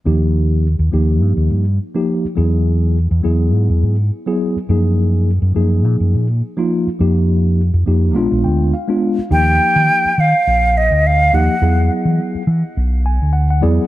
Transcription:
0.05 fingered electric bass D#2, tine electric piano F3 A#3 D#4 G4
0.79 fingered electric bass D#2
0.92 fingered electric bass D#2, tine electric piano F3 A#3 D#4 G4
1.22 fingered electric bass G2
1.37 fingered electric bass D#2
1.51 fingered electric bass G2
1.95 tine electric piano F3 A#3 D#4 G4
2.25 muted fingered electric bass stroke
2.35 fingered electric bass E2, tine electric piano F#3 B3 E4 G#4
3.11 fingered electric bass E2
3.23 fingered electric bass E2, tine electric piano F#3 B3 E4 G#4
3.53 fingered electric bass G#2
3.69 fingered electric bass E2
3.83 fingered electric bass G#2
4.27 tine electric piano F#3 B3 E4 G#4
4.56 muted fingered electric bass stroke
4.69 fingered electric bass F#2, tine electric piano F3 A#3 D#4 G#4
5.42 fingered electric bass F#2
5.55 fingered electric bass F#2, tine electric piano F3 A#3 D#4 G#4
5.85 fingered electric bass A#2
6.00 fingered electric bass F#2
6.14 fingered electric bass A#2
6.57 tine electric piano F3 A#3 D#4 F4
6.87 muted fingered electric bass stroke
6.99 fingered electric bass F2, tine electric piano F3 A#3 D#4 G4
7.74 fingered electric bass F2
7.86 fingered electric bass F2, tine electric piano F3 A#3 D#4 G4
8.15 fingered electric bass A#1, tine electric piano G#3 B3 D4 F4
8.32 fingered electric bass A#1
8.44 fingered electric bass D2, tine electric piano G5
8.74 tine electric piano F5
8.88 tine electric piano G#3 B3 D4 F4
9.18 muted fingered electric bass stroke
9.30 fingered electric bass D#2, tine electric piano F3 A#3 D#4 G4, flute G5
9.76 fingered electric bass D#3
10.05 muted fingered electric bass stroke
10.18 fingered electric bass D#3, flute F5
10.47 fingered electric bass A#1
10.77 flute D#5
10.91 fingered electric bass D2
11.07 flute F5
11.33 fingered electric bass D#2, tine electric piano F3 A#3 D#4 G4, flute F#5
11.61 fingered electric bass E2, tine electric piano F#3 B3 E4 G#4
12.05 fingered electric bass E3
12.35 muted fingered electric bass stroke
12.47 fingered electric bass E3
12.77 fingered electric bass B1
13.06 tine electric piano G#5
13.22 fingered electric bass D2
13.33 tine electric piano F#5
13.50 tine electric piano F#5
13.61 fingered electric bass E2, tine electric piano F#3 B3 E4 G#4 D5

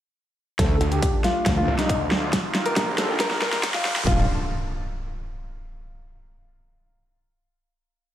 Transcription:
0.59 wobble bass D2, supersaw synth A3 D4 F4, grand piano A4, kick, snare, closed hi-hat, riser
0.81 detuned saw bass D2, closed hi-hat
0.92 grand piano G4, closed hi-hat
1.02 kick, closed hi-hat
1.24 grand piano F4, snare, closed hi-hat
1.46 wobble bass D2, kick, snare, closed hi-hat
1.57 grand piano F4
1.68 detuned saw bass C2
1.79 grand piano D#4, snare, closed hi-hat
1.89 kick, closed hi-hat
2.00 detuned saw bass D2
2.11 snare
2.33 supersaw synth D#3 D#4 G4 A#4, kick, snare, closed hi-hat
2.55 snare, closed hi-hat
2.66 grand piano A#4, closed hi-hat
2.76 wobble bass A#1, kick, snare, closed hi-hat
2.98 grand piano A4, snare, closed hi-hat
3.20 grand piano A#4, kick, snare, closed hi-hat
3.31 snare
3.42 detuned saw bass A#1, grand piano A#4, snare
3.53 snare, closed hi-hat
3.63 kick, snare, closed hi-hat
3.74 detuned saw bass D#1, grand piano F4, snare
3.85 snare
3.96 snare
4.07 wobble bass D1, supersaw synth D3 D4 F4 A4 A5, grand piano F4, kick, impact

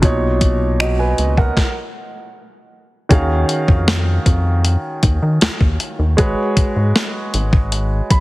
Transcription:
0.02 analog synth bass B1, grand piano A#2 B2 D#4 C#5, kick, closed hi-hat
0.41 kick, closed hi-hat
0.80 grand piano F#4 D#5, finger snap
0.99 grand piano B4 G#5
1.18 analog synth bass C#2, closed hi-hat
1.37 grand piano A#4 F#5, kick
1.57 kick, snare
3.09 analog synth bass D#2, grand piano D#3 C#4 F#4 G#4 F5, kick, closed hi-hat
3.49 closed hi-hat
3.68 analog synth bass F2, kick
3.88 snare
4.26 analog synth bass F2, kick, closed hi-hat
4.65 closed hi-hat
5.03 analog synth bass D#2, kick, closed hi-hat
5.22 analog synth bass D#3
5.41 analog synth bass D#2, snare, closed hi-hat
5.61 analog synth bass D#2, kick
5.80 closed hi-hat
5.99 analog synth bass D#2
6.17 analog synth bass G#1, grand piano G#3 F#4 G#4 B4 C#5, kick, closed hi-hat
6.57 analog synth bass G#2, kick, closed hi-hat
6.76 analog synth bass G#2
6.96 snare
7.34 analog synth bass G#1, closed hi-hat
7.53 kick
7.72 closed hi-hat
8.10 analog synth bass B1, grand piano B5, kick, closed hi-hat

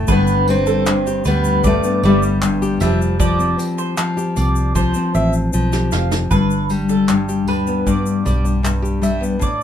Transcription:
Already playing: steel-string acoustic guitar A3, nylon-string guitar A3 D4 A4
0.07 fingered electric bass G1, nylon-string guitar G2, mandolin B4, kick, shaker
0.12 steel-string acoustic guitar B3
0.27 shaker
0.48 nylon-string guitar G3, steel-string acoustic guitar C4, tambourine
0.67 mandolin A4, shaker
0.86 nylon-string guitar G2, clap, shaker
1.07 nylon-string guitar G4, shaker
1.24 fingered electric bass D2, nylon-string guitar G3, steel-string acoustic guitar B3, mandolin B4, tambourine, shaker
1.44 shaker
1.64 nylon-string guitar G2, steel-string acoustic guitar A3, mandolin D5, kick, shaker
1.84 nylon-string guitar B3, shaker
2.03 fingered electric bass G1, nylon-string guitar G3, steel-string acoustic guitar G3, mandolin D5, tambourine
2.23 shaker
2.42 nylon-string guitar G2, clap, shaker
2.62 nylon-string guitar G4, shaker
2.80 fingered electric bass F1, nylon-string guitar F3, steel-string acoustic guitar G3, mandolin E5, tambourine, shaker
3.02 shaker
3.19 nylon-string guitar F3, mandolin D5, kick, shaker
3.39 nylon-string guitar C4, shaker
3.58 nylon-string guitar C4, tambourine, shaker
3.78 mandolin C5, shaker
3.97 nylon-string guitar F3, clap, shaker
4.17 nylon-string guitar G4, shaker
4.36 fingered electric bass C2, nylon-string guitar C4, mandolin D5, tambourine, shaker
4.56 shaker
4.75 nylon-string guitar F3, mandolin C5, kick, shaker
4.94 nylon-string guitar C4, shaker
5.15 fingered electric bass A1, nylon-string guitar C4, mandolin E5, shaker
5.33 shaker
5.53 fingered electric bass B1, nylon-string guitar F3, shaker
5.72 nylon-string guitar G4, snare, shaker
5.91 fingered electric bass F1, nylon-string guitar C4, mandolin F5, snare, shaker
6.11 snare, shaker
6.31 fingered electric bass G1, nylon-string guitar G2, mandolin B4, kick, shaker
6.51 shaker
6.70 nylon-string guitar G3, tambourine, shaker
6.89 nylon-string guitar D4, mandolin A4, shaker
7.08 nylon-string guitar G2, clap, shaker
7.29 nylon-string guitar G4, shaker
7.47 fingered electric bass D2, nylon-string guitar G3, mandolin B4, tambourine
7.67 nylon-string guitar B3, shaker
7.87 nylon-string guitar G2, mandolin D5, kick, shaker
8.06 shaker
8.25 fingered electric bass B1, nylon-string guitar G3, mandolin D5, tambourine, shaker
8.45 nylon-string guitar D4, shaker
8.63 nylon-string guitar G2, clap, shaker
8.82 nylon-string guitar G4, shaker
9.02 nylon-string guitar G3, mandolin E5, tambourine, shaker
9.21 nylon-string guitar B3, shaker
9.39 fingered electric bass A1, nylon-string guitar A2, mandolin D5, kick, shaker

